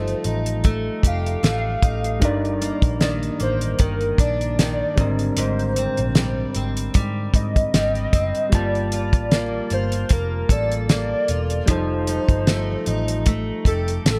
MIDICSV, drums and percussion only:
0, 0, Header, 1, 2, 480
1, 0, Start_track
1, 0, Tempo, 788436
1, 1350, Time_signature, 4, 2, 24, 8
1, 8641, End_track
2, 0, Start_track
2, 0, Title_t, "Drums"
2, 46, Note_on_c, 9, 42, 31
2, 107, Note_off_c, 9, 42, 0
2, 148, Note_on_c, 9, 42, 57
2, 209, Note_off_c, 9, 42, 0
2, 280, Note_on_c, 9, 42, 54
2, 341, Note_off_c, 9, 42, 0
2, 388, Note_on_c, 9, 42, 74
2, 394, Note_on_c, 9, 36, 85
2, 449, Note_off_c, 9, 42, 0
2, 455, Note_off_c, 9, 36, 0
2, 629, Note_on_c, 9, 36, 74
2, 636, Note_on_c, 9, 42, 67
2, 690, Note_off_c, 9, 36, 0
2, 697, Note_off_c, 9, 42, 0
2, 770, Note_on_c, 9, 42, 49
2, 831, Note_off_c, 9, 42, 0
2, 877, Note_on_c, 9, 42, 76
2, 878, Note_on_c, 9, 38, 95
2, 938, Note_off_c, 9, 42, 0
2, 939, Note_off_c, 9, 38, 0
2, 1111, Note_on_c, 9, 36, 84
2, 1112, Note_on_c, 9, 42, 59
2, 1172, Note_off_c, 9, 36, 0
2, 1173, Note_off_c, 9, 42, 0
2, 1244, Note_on_c, 9, 42, 47
2, 1305, Note_off_c, 9, 42, 0
2, 1351, Note_on_c, 9, 42, 92
2, 1352, Note_on_c, 9, 36, 96
2, 1412, Note_off_c, 9, 42, 0
2, 1413, Note_off_c, 9, 36, 0
2, 1491, Note_on_c, 9, 42, 31
2, 1552, Note_off_c, 9, 42, 0
2, 1593, Note_on_c, 9, 42, 69
2, 1654, Note_off_c, 9, 42, 0
2, 1718, Note_on_c, 9, 36, 89
2, 1722, Note_on_c, 9, 42, 46
2, 1779, Note_off_c, 9, 36, 0
2, 1783, Note_off_c, 9, 42, 0
2, 1830, Note_on_c, 9, 42, 64
2, 1832, Note_on_c, 9, 38, 102
2, 1891, Note_off_c, 9, 42, 0
2, 1893, Note_off_c, 9, 38, 0
2, 1965, Note_on_c, 9, 42, 30
2, 2026, Note_off_c, 9, 42, 0
2, 2068, Note_on_c, 9, 42, 53
2, 2129, Note_off_c, 9, 42, 0
2, 2199, Note_on_c, 9, 42, 52
2, 2260, Note_off_c, 9, 42, 0
2, 2305, Note_on_c, 9, 42, 77
2, 2312, Note_on_c, 9, 36, 88
2, 2366, Note_off_c, 9, 42, 0
2, 2373, Note_off_c, 9, 36, 0
2, 2439, Note_on_c, 9, 42, 32
2, 2500, Note_off_c, 9, 42, 0
2, 2547, Note_on_c, 9, 36, 78
2, 2552, Note_on_c, 9, 42, 66
2, 2608, Note_off_c, 9, 36, 0
2, 2613, Note_off_c, 9, 42, 0
2, 2685, Note_on_c, 9, 42, 46
2, 2746, Note_off_c, 9, 42, 0
2, 2794, Note_on_c, 9, 42, 78
2, 2795, Note_on_c, 9, 38, 95
2, 2855, Note_off_c, 9, 42, 0
2, 2856, Note_off_c, 9, 38, 0
2, 3028, Note_on_c, 9, 42, 62
2, 3030, Note_on_c, 9, 36, 101
2, 3089, Note_off_c, 9, 42, 0
2, 3090, Note_off_c, 9, 36, 0
2, 3159, Note_on_c, 9, 42, 48
2, 3220, Note_off_c, 9, 42, 0
2, 3267, Note_on_c, 9, 42, 86
2, 3328, Note_off_c, 9, 42, 0
2, 3405, Note_on_c, 9, 42, 29
2, 3466, Note_off_c, 9, 42, 0
2, 3508, Note_on_c, 9, 42, 65
2, 3569, Note_off_c, 9, 42, 0
2, 3637, Note_on_c, 9, 42, 44
2, 3698, Note_off_c, 9, 42, 0
2, 3745, Note_on_c, 9, 42, 66
2, 3746, Note_on_c, 9, 38, 105
2, 3805, Note_off_c, 9, 42, 0
2, 3807, Note_off_c, 9, 38, 0
2, 3985, Note_on_c, 9, 42, 51
2, 4046, Note_off_c, 9, 42, 0
2, 4120, Note_on_c, 9, 42, 53
2, 4181, Note_off_c, 9, 42, 0
2, 4225, Note_on_c, 9, 42, 82
2, 4231, Note_on_c, 9, 36, 85
2, 4286, Note_off_c, 9, 42, 0
2, 4292, Note_off_c, 9, 36, 0
2, 4466, Note_on_c, 9, 36, 77
2, 4470, Note_on_c, 9, 42, 72
2, 4527, Note_off_c, 9, 36, 0
2, 4531, Note_off_c, 9, 42, 0
2, 4603, Note_on_c, 9, 36, 83
2, 4605, Note_on_c, 9, 42, 49
2, 4664, Note_off_c, 9, 36, 0
2, 4666, Note_off_c, 9, 42, 0
2, 4712, Note_on_c, 9, 42, 86
2, 4713, Note_on_c, 9, 38, 103
2, 4773, Note_off_c, 9, 42, 0
2, 4774, Note_off_c, 9, 38, 0
2, 4841, Note_on_c, 9, 42, 30
2, 4902, Note_off_c, 9, 42, 0
2, 4950, Note_on_c, 9, 36, 82
2, 4951, Note_on_c, 9, 42, 62
2, 5010, Note_off_c, 9, 36, 0
2, 5011, Note_off_c, 9, 42, 0
2, 5082, Note_on_c, 9, 42, 45
2, 5143, Note_off_c, 9, 42, 0
2, 5188, Note_on_c, 9, 42, 90
2, 5191, Note_on_c, 9, 36, 97
2, 5249, Note_off_c, 9, 42, 0
2, 5252, Note_off_c, 9, 36, 0
2, 5328, Note_on_c, 9, 42, 29
2, 5389, Note_off_c, 9, 42, 0
2, 5430, Note_on_c, 9, 42, 69
2, 5491, Note_off_c, 9, 42, 0
2, 5558, Note_on_c, 9, 36, 92
2, 5560, Note_on_c, 9, 42, 43
2, 5618, Note_off_c, 9, 36, 0
2, 5621, Note_off_c, 9, 42, 0
2, 5671, Note_on_c, 9, 42, 71
2, 5673, Note_on_c, 9, 38, 99
2, 5732, Note_off_c, 9, 42, 0
2, 5733, Note_off_c, 9, 38, 0
2, 5907, Note_on_c, 9, 42, 54
2, 5968, Note_off_c, 9, 42, 0
2, 6039, Note_on_c, 9, 42, 51
2, 6100, Note_off_c, 9, 42, 0
2, 6144, Note_on_c, 9, 42, 80
2, 6152, Note_on_c, 9, 36, 88
2, 6205, Note_off_c, 9, 42, 0
2, 6213, Note_off_c, 9, 36, 0
2, 6388, Note_on_c, 9, 36, 77
2, 6392, Note_on_c, 9, 42, 66
2, 6449, Note_off_c, 9, 36, 0
2, 6453, Note_off_c, 9, 42, 0
2, 6524, Note_on_c, 9, 42, 49
2, 6585, Note_off_c, 9, 42, 0
2, 6632, Note_on_c, 9, 42, 78
2, 6634, Note_on_c, 9, 38, 97
2, 6693, Note_off_c, 9, 42, 0
2, 6694, Note_off_c, 9, 38, 0
2, 6869, Note_on_c, 9, 42, 65
2, 6930, Note_off_c, 9, 42, 0
2, 7001, Note_on_c, 9, 42, 48
2, 7062, Note_off_c, 9, 42, 0
2, 7108, Note_on_c, 9, 42, 90
2, 7112, Note_on_c, 9, 36, 94
2, 7169, Note_off_c, 9, 42, 0
2, 7173, Note_off_c, 9, 36, 0
2, 7350, Note_on_c, 9, 42, 68
2, 7411, Note_off_c, 9, 42, 0
2, 7479, Note_on_c, 9, 36, 83
2, 7483, Note_on_c, 9, 42, 44
2, 7540, Note_off_c, 9, 36, 0
2, 7544, Note_off_c, 9, 42, 0
2, 7592, Note_on_c, 9, 42, 69
2, 7594, Note_on_c, 9, 38, 98
2, 7653, Note_off_c, 9, 42, 0
2, 7655, Note_off_c, 9, 38, 0
2, 7831, Note_on_c, 9, 42, 58
2, 7892, Note_off_c, 9, 42, 0
2, 7964, Note_on_c, 9, 42, 54
2, 8025, Note_off_c, 9, 42, 0
2, 8071, Note_on_c, 9, 42, 85
2, 8076, Note_on_c, 9, 36, 85
2, 8132, Note_off_c, 9, 42, 0
2, 8137, Note_off_c, 9, 36, 0
2, 8311, Note_on_c, 9, 36, 75
2, 8317, Note_on_c, 9, 42, 71
2, 8372, Note_off_c, 9, 36, 0
2, 8378, Note_off_c, 9, 42, 0
2, 8450, Note_on_c, 9, 42, 49
2, 8511, Note_off_c, 9, 42, 0
2, 8559, Note_on_c, 9, 42, 82
2, 8561, Note_on_c, 9, 38, 106
2, 8620, Note_off_c, 9, 42, 0
2, 8621, Note_off_c, 9, 38, 0
2, 8641, End_track
0, 0, End_of_file